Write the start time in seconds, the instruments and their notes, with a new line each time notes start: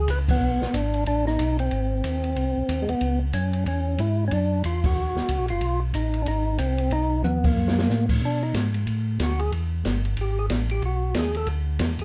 Already playing: tonewheel organ G#4
0.08 tonewheel organ C#2 B4, kick, hi-hat pedal, ride
0.28 tonewheel organ B3, kick, crash
0.40 tonewheel organ B1
0.61 tonewheel organ B1, snare
0.74 tonewheel organ G#1 D4, kick, hi-hat pedal, ride
0.94 ride
1.06 tonewheel organ A1 D4, kick, ride
1.27 tonewheel organ D#4, snare
1.39 tonewheel organ B1, kick, hi-hat pedal, ride
1.59 tonewheel organ C4, ride
1.71 tonewheel organ G#1, kick, ride
2.04 tonewheel organ D#2, kick, hi-hat pedal, ride
2.24 ride
2.36 tonewheel organ C2, kick, ride
2.57 tonewheel organ C2
2.69 tonewheel organ D#2, kick, hi-hat pedal, ride
2.82 tonewheel organ G#3
2.89 tonewheel organ D#2 B3, ride
3.01 tonewheel organ C#2, kick, ride
3.33 tonewheel organ F#2 C#4, kick, hi-hat pedal, ride
3.53 ride
3.66 tonewheel organ E2 C#4, kick, ride
3.98 tonewheel organ G#2 E4, kick, hi-hat pedal, ride
4.28 tonewheel organ F#2 C#4, kick, ride
4.33 tonewheel organ D4
4.64 tonewheel organ E2 F4, kick, hi-hat pedal, ride
4.84 tonewheel organ F#4, kick, crash
4.95 tonewheel organ D#2
5.15 tonewheel organ D#2, snare
5.29 tonewheel organ C#2, kick, hi-hat pedal, ride
5.40 tonewheel organ A#1
5.48 tonewheel organ F#1 F4, ride
5.61 tonewheel organ B1, kick, ride
5.94 tonewheel organ A1 D#4, kick, hi-hat pedal, ride
6.14 ride
6.22 tonewheel organ D4
6.26 tonewheel organ G#1 D#4, kick, ride
6.58 tonewheel organ C2 C4, kick, hi-hat pedal, ride
6.78 ride
6.91 tonewheel organ B1 D#4, kick, ride
7.23 tonewheel organ D#2 B3, hi-hat pedal, high tom
7.44 tonewheel organ A#3, kick, crash
7.56 tonewheel organ F#2
7.68 snare
7.79 snare
7.89 tonewheel organ A2, snare, hi-hat pedal
8.09 kick, crash
8.21 tonewheel organ B2 D4, kick
8.43 tonewheel organ D#4
8.54 tonewheel organ G#2, kick, snare, hi-hat pedal, ride
8.74 ride
8.87 tonewheel organ A2, kick, ride
9.19 tonewheel organ D2 F#4, kick, snare, hi-hat pedal, ride
9.39 tonewheel organ G#4, ride
9.52 tonewheel organ E2, kick, ride
9.84 tonewheel organ G1, kick, snare, hi-hat pedal, ride
10.05 ride
10.17 tonewheel organ G#1, kick, ride
10.21 tonewheel organ G4
10.39 tonewheel organ G#4
10.50 tonewheel organ A1, kick, snare, hi-hat pedal, ride
10.70 tonewheel organ G4, ride
10.82 tonewheel organ B1 F#4, kick, ride
11.14 tonewheel organ D#2 G#4, kick, snare, hi-hat pedal, ride
11.34 tonewheel organ A4, ride
11.47 tonewheel organ D2, kick, ride
11.79 tonewheel organ E2, kick, snare, hi-hat pedal, ride
11.99 tonewheel organ E2 G#4, ride